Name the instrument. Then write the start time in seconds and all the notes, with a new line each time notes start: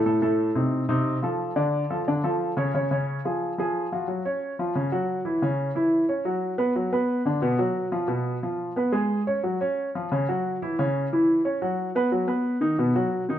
upright piano
0.06 A2 A3 A4
0.22 A2 A3 A4
0.55 C3 C4 D#4
0.89 C3 C4 D#4
1.22 F3 F4 A4
1.56 D3 D4 D5
1.90 F3 F4 A4
2.08 D3 D4 D5
2.24 F3 F4 A4
2.57 C#3 C#4 C#5
2.74 C#3 C#4 C#5
2.91 C#3 C#4 C#5
3.25 F3 F4 G#4
3.58 F3 F4 G#4
3.92 F3 F4 F#4
4.08 F#3 F#4
4.25 C#4 C#5
4.59 F3 F4
4.75 C#3 C#4
4.92 F#3 F#4
5.25 E3 E4
5.42 C#3 C#4
5.75 E3 E4
6.09 C#4 C#5
6.25 F#3 F#4
6.58 B3 B4
6.76 F#3 F#4
6.93 B3 B4
7.25 D3 D4
7.42 B2 B3
7.59 F#3 F#4
7.92 F3 F4
8.08 B2 B3
8.43 F3 F4
8.76 B3 B4
8.92 G#3 G#4
9.27 C#4 C#5
9.43 F#3 F#4
9.61 C#4 C#5
9.95 F3 F4
10.12 C#3 C#4
10.29 F#3 F#4
10.62 E3 E4
10.79 C#3 C#4
11.13 E3 E4
11.45 C#4 C#5
11.62 F#3 F#4
11.95 B3 B4
12.12 F#3 F#4
12.27 B3 B4
12.61 D#3 D#4
12.78 B2 B3
12.95 F#3 F#4
13.29 D#3 D#4